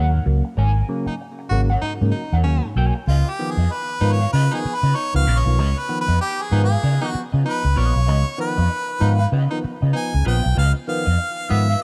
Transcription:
Already playing: D#2 F#3 A#3 A#4 C#5 F#5
0.13 G#2
0.26 C#2 F#3 A#3, muted clean electric guitar stroke
0.45 muted clean electric guitar stroke
0.57 G#1 G#2 A#4 C#5 G#5
0.89 C#3 F#3 A#3
1.06 F#3 A#3 D#4, muted fingered electric bass stroke, muted clean electric guitar stroke
1.21 muted clean electric guitar stroke
1.39 muted clean electric guitar stroke
1.49 G#1 C#3 F#3 A#3 F#4
1.70 A#4 C#5 F#5
1.81 G#2 D#4, muted fingered electric bass stroke, muted clean electric guitar stroke
2.01 G#2 C#3 F#3 A#3, muted clean electric guitar stroke
2.11 F#3 A#3 D#4
2.33 E2 A#4 C#5 F#5
2.43 D#2 F#3 A#3 C#4, muted clean electric guitar stroke
2.63 G#2, muted clean electric guitar stroke
2.76 B1 F#3 A#3 A#4 C#5 G#5
2.95 muted clean electric guitar stroke
3.07 C#2 C#3 F4 B4 D#5
3.27 G4, muted clean electric guitar stroke
3.39 D#3 F3 B3, muted clean electric guitar stroke
3.51 G#4
3.57 F2 F3 B3 F4 B4 D#5
3.71 B4, muted clean electric guitar stroke
3.89 muted clean electric guitar stroke
4.00 G#2 D#3 F3 B3 D#4 F4 B4 F5
4.13 C#5
4.21 F4 B4 F5
4.33 C#3 F4 B4 D#5
4.51 D#3 F3 B3 D#4 G#4
4.64 F3 B3, muted clean electric guitar stroke, muted fingered electric bass stroke
4.75 B4
4.83 C#3 F4 B4 D#5
4.95 D#4 C#5
5.14 C#2 D#3 F3 B3 F5, muted clean electric guitar stroke
5.27 A#1 C#3 F4 B4 D#5
5.39 C#5
5.45 B1 D#3 F3 B3, muted clean electric guitar stroke
5.58 C#2 C#3 F4 B4 D#5
5.78 B4, muted clean electric guitar stroke
5.89 D#3 F3 B3, muted clean electric guitar stroke
6.01 B4
6.08 F2 F3 B3 F4 B4 D#5
6.20 G4, muted clean electric guitar stroke
6.40 G#4, muted clean electric guitar stroke
6.51 G#2 D#3 F3 B3 D#4 F4 B4 F5
6.64 G#4
6.70 F4 B4 F5
6.83 C#3 F4 B4 D#5
7.01 D#3 F3 B3 D#4
7.08 F#4
7.13 F3 B3, muted clean electric guitar stroke, muted fingered electric bass stroke
7.32 C#3 F4 B4 D#5
7.44 F3 B3 D#4 B4
7.64 C#2 C#3, muted clean electric guitar stroke
7.76 A#1 F3 B3 F4 B4 C#5 D#5
7.94 B1, muted clean electric guitar stroke
8.06 C#2 C#3 F4 B4 D#5
8.25 muted clean electric guitar stroke
8.38 D#3 F3 B3 B4, muted clean electric guitar stroke
8.57 F2 F3 B3 F4 B4 D#5
8.69 muted clean electric guitar stroke
8.88 muted clean electric guitar stroke
9.00 G#2 D#3 F3 B3 D#4 F4 B4 F5
9.19 F4 B4 F5
9.32 C#3 F4 B4 D#5
9.50 D#3 F3 B3 D#4
9.64 F3 B3, muted clean electric guitar stroke, muted fingered electric bass stroke
9.82 C#3 F4 B4 D#5
9.93 F3 B3 D#4 G#5
10.13 C#2 C#3, muted clean electric guitar stroke
10.25 A#1 F3 B3 F4 B4 D#5 G5
10.44 B1, muted clean electric guitar stroke
10.55 C#2 C#3 F4 B4 D#5 F5
10.74 muted clean electric guitar stroke
10.88 D#3 F3 B3 F5, muted clean electric guitar stroke
11.06 F2 F4 B4 D#5
11.18 muted clean electric guitar stroke
11.37 muted clean electric guitar stroke
11.49 G#2 D#3 F3 B3 F4 B4 E5 F5
11.69 F4 B4 F5

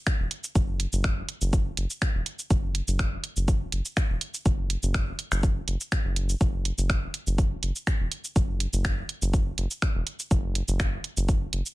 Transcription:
0.07 finger snap, kick, cabasa
0.20 E1
0.31 closed hi-hat
0.44 cabasa
0.55 F#1, kick, cabasa
0.80 closed hi-hat
0.93 F#1, cabasa
1.04 finger snap, kick, cabasa
1.29 closed hi-hat
1.41 F#1, cabasa
1.53 kick, cabasa
1.77 F#1, closed hi-hat
1.90 cabasa
2.02 finger snap, kick, cabasa
2.15 E1
2.26 closed hi-hat
2.39 cabasa
2.50 F#1, kick, cabasa
2.75 closed hi-hat
2.88 F#1, cabasa
2.99 finger snap, kick, cabasa
3.24 closed hi-hat
3.37 F#1, cabasa
3.48 kick, cabasa
3.72 F#1, closed hi-hat
3.85 cabasa
3.97 finger snap, kick, cabasa
4.10 E1
4.21 closed hi-hat
4.34 cabasa
4.46 F#1, kick, cabasa
4.70 closed hi-hat
4.83 F#1, cabasa
4.94 finger snap, kick, cabasa
5.19 closed hi-hat
5.32 F#1, finger snap, cabasa
5.43 kick, cabasa
5.68 F#1, closed hi-hat
5.81 cabasa
5.92 finger snap, kick, cabasa
6.05 F#1
6.16 closed hi-hat
6.29 cabasa
6.41 F#1, kick, cabasa
6.65 closed hi-hat
6.78 F#1, cabasa
6.90 finger snap, kick, cabasa
7.14 closed hi-hat
7.27 F#1, cabasa
7.38 kick, cabasa
7.63 F#1, closed hi-hat
7.76 cabasa
7.87 finger snap, kick, cabasa
8.00 E1
8.12 closed hi-hat
8.24 cabasa
8.36 F#1, kick, cabasa
8.60 closed hi-hat
8.73 F#1, cabasa
8.85 finger snap, kick, cabasa
9.09 closed hi-hat
9.22 F#1, cabasa
9.34 kick, cabasa
9.58 F#1, closed hi-hat
9.71 cabasa
9.82 finger snap, kick, cabasa
9.95 E1
10.07 closed hi-hat
10.19 cabasa
10.31 F#1, kick, cabasa
10.55 closed hi-hat
10.68 F#1, cabasa
10.80 finger snap, kick, cabasa
11.04 closed hi-hat
11.17 F#1, cabasa
11.29 kick, cabasa
11.53 F#1, closed hi-hat
11.66 cabasa

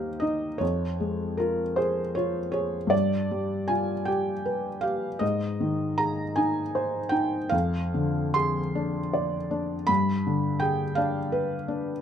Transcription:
Already playing: D#2 G3 D#4 G4 C5 F5 G5
0.20 D#4 D#5
0.58 F2 C#5
1.00 G#3
1.37 F4 A#4
1.76 G#4 C5
2.15 F4 C#5
2.52 G#4 C#5
2.87 G2 D5
3.31 G3
3.68 F4 G#5
4.05 G4 G5
4.46 B4
4.81 G4 F5
5.19 G#2 D#5
5.60 D#3
5.98 G#4 A#5
6.36 D#4 G#5
6.75 C5
7.09 D#4 G5
7.49 F2 F5
7.94 D3
8.34 G#4 C6
8.75 D4
9.13 D5
9.51 D4
9.87 G2 B5
10.27 D3
10.60 G#4 G5
10.95 D4 F5
11.32 B4
11.68 D4

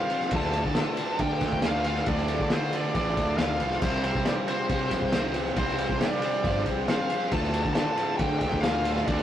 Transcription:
Already playing: C3 G3 C4 F4 G4 C5 F5
0.10 C3 G3 C4 F4 G4 C5, ride
0.20 snare
0.31 D2 A2 D3 A3 F4 A4 D5 F5, kick, ride
0.35 A4 A5
0.42 snare
0.53 D2 A2 D3 A3 F4, ride
0.65 D3, kick
0.74 D2 A2 D3 F4 A4 D5 E5, snare, ride
0.78 A3 F4 A4 A5
0.97 D2 A2 D3 A3 F4, ride
1.19 D2 A2 D3 A3 F4 A4 D5 F5 G5, kick, ride
1.41 D2 A2 D3 A3 F4, kick, ride
1.52 D2, kick
1.62 D2 A2 D3 A3 F4 A4 D5 F5 G5, snare, ride
1.84 D2 A2 D3 A3 F4 F5, ride
1.95 snare
2.06 D2 A2 D3 A3 D4 F4 A4 D5 G5, kick, ride
2.17 snare
2.28 D2 A2 D3 A3 F4, ride
2.40 D3, kick
2.50 D2 A2 D3 A3 F4 A4 C5 D5 F5, snare, ride
2.73 D2 A2 D3 A3 D4 F4 D5, ride
2.94 A1 D2 A2 D3 A3 D4 F4 A4 D5 G5, kick, ride
3.17 D2 A2 D3 A3 F4, kick, ride
3.38 D2 A2 D3 A3 F4 A4 D5 F5, snare, ride
3.51 B3 C4
3.57 D4 E4 F4, ride
3.61 C2 D2 A2 D3 A3 F4
3.65 G4 A4
3.71 B4 C5, snare
3.76 D5 E5
3.82 C2 C3 G3 C4 F4 G4 C5 F5, kick, crash
4.03 C3 G3 C4 F4 G4 C5, ride
4.15 C3, kick
4.25 C3 G3 C4 F4 G4 C5 D5 F5, snare, ride
4.47 C3 G3 C4 F4 G4 C5, ride
4.69 C3 G3 C4 F4 G4 C5 F5, kick, ride
4.91 C2 C3 G3 C4 F4 G4 C5, kick, ride
5.02 C2, kick
5.12 C3 G3 C4 F4 G4 C5 G5, snare, ride
5.34 C3 G3 C4 F4 G4 C5, ride
5.46 snare
5.56 C2 C3 G3 C4 F4 G4 C5 F5, kick, ride
5.67 snare
5.78 C3 G3 C4 F4 G4 C5, ride
5.89 C3, kick
5.98 C3 G3 C4 F4 G4 C5 D5 G5, snare, ride
6.03 G4 C5
6.21 C3 G3 F4 G4 C5, ride
6.25 C4
6.43 G1 C3 G3 C4 F4 G4 C5 F5, kick, ride
6.66 C2 C3 G3 C4 F4 G4 C5, kick, ride
6.87 C3 G3 C4 F4 G4 C5 F5 G5, snare, ride
7.09 C3 G3 C4 F4 G4 C5, ride
7.31 D2 A2 D3 A3 D4 F4 A4 D5 F5 A5, kick, ride
7.43 snare
7.53 D2 A2 D3 A3 F4, ride
7.65 D3, kick
7.74 D2 F4 A4 D5 F5 A5, snare, ride
7.78 A2 D3 A3 F4
7.97 D2 A2 A3 F4, ride
8.01 D3
8.17 D2 A2 D3 F4 A4 D5 F5 G5, kick, ride
8.23 A3 F4
8.39 D2 A3 F4 G4 G5, kick, ride
8.44 D2 A2 D3
8.52 D2, kick
8.61 D2 A2 D3 F4 A4 D5 F5, snare, ride
8.65 A3 F4
8.85 D2 A2 D3 A3 F4, ride
8.96 snare
9.06 D2 A2 D3 A3 D4 F4 A4 D5 G5, kick, ride
9.19 snare

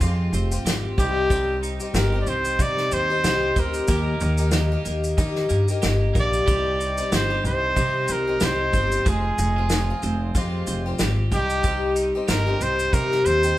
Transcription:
Already playing: G#3 C4
0.01 F2 G#3 C4 F4 G4, kick, shaker
0.33 F1 C4, shaker
0.52 C4 F4 G4, shaker
0.65 G#1 G4, snare, shaker
0.98 C2 G3 C4 D#4 G4, kick, shaker
1.30 G3 C4 D#4 G4, kick, shaker
1.63 D#4, shaker
1.80 C4 D#4 G4, shaker
1.94 G1 G4 A#4, snare, shaker
2.12 C4 D#4 G4
2.21 D5
2.27 C2 C4 C5, shaker
2.45 shaker
2.59 C3 G3 C4 D#4 G4 D5, kick, shaker
2.77 snare
2.92 D#2 C4 C5, shaker
3.10 C4 D#4 G4
3.24 C2 G4, snare, shaker
3.56 D2 G3 C4 D#4 G4 A#4, kick, shaker
3.74 shaker
3.88 D#2 G3 A#3 D#4 G4, kick, shaker
4.21 D#2 D#4, shaker
4.38 A#3 D#4 G4, shaker
4.51 G4, snare, shaker
4.72 A#3 D#4 G4
4.85 D#2 A#3, shaker
5.04 shaker
5.17 D#3 G3 A#3 D#4 G4, kick, shaker
5.36 snare
5.49 G2 A#3, shaker
5.68 A#3 D#4 G4, shaker
5.82 G1 G4, snare, shaker
6.14 A#1 G3 A#3 D#4 G4, kick, shaker
6.19 D5
6.33 shaker
6.46 C2 G3 C4 D#4 G4, kick, shaker
6.50 G4
6.79 D#4, shaker
6.98 C4 D#4 G4, shaker
7.12 G1 G4 C5, snare, shaker
7.30 C4 D#4 G4
7.44 C2 C4 C5, shaker
7.76 C3 G3 C4 D#4 G4, kick, shaker
8.08 C2 C4, shaker
8.12 A#4
8.28 C4 D#4 G4
8.40 C2 G4 C5, snare, shaker
8.73 G1 G3 C4 D#4 G4, kick, shaker
8.92 shaker
9.05 F1 G#3 C4 F4 G#4, kick, shaker
9.38 F1 D#4, shaker
9.56 C4 F4
9.70 snare, shaker
9.90 C4 F4
10.03 F1 C4, shaker
10.35 F2 G#3 C4 F4 G4, kick, shaker
10.67 F1 C4, shaker
10.86 C4 F4 G4
10.99 G#1 G4, snare, shaker
11.31 C2 G3 C4 D#4 G4, kick, shaker
11.50 shaker
11.63 G3 C4 D#4 G4, kick, shaker
11.96 D#4, shaker
12.15 C4 D#4 G4
12.28 G1 G4 A#4, snare, shaker
12.46 C4 D#4 G4
12.60 C2 C4 C5, shaker
12.79 shaker
12.92 C3 G3 C4 D#4 A#4, kick, shaker
12.96 G4
13.11 snare
13.24 D#2 C4 C5, shaker
13.43 C4 D#4 G4, shaker

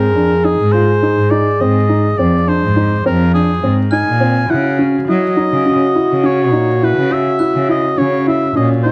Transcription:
Already playing: G#2 G#4 A#4 A#6
0.15 F2 D4
0.44 D#4 G#4
0.59 G#2
0.72 F4 C5
1.03 D#4
1.17 G#2
1.31 D#4 D5
1.61 G#2 C4 D#5
1.89 D#4
2.18 F2 C4 D5
2.47 D4 C5
2.62 G#2
2.76 D#4
3.06 F2 C4 A#4
3.34 D4 G#4
3.63 G#2 C4
3.91 D#4 G#5 F6
4.06 A#2
4.21 C4
4.48 C#3 E4 F#4 F#5
4.79 C#4
5.08 F#3 E4 D#5
5.37 D#4
5.51 C#3
5.66 C#4
5.95 E4
6.10 C#3
6.24 C#4 C#5
6.52 A#2 D#4
6.82 E4 B4
6.97 C#3
7.11 F#4 E5
7.39 E4 F#6
7.55 C#3
7.69 E4 D#5
7.98 C#3 C#4 C#5
8.27 E4 E5
8.55 A#2 C#4 D#5
8.83 D#4 C#5

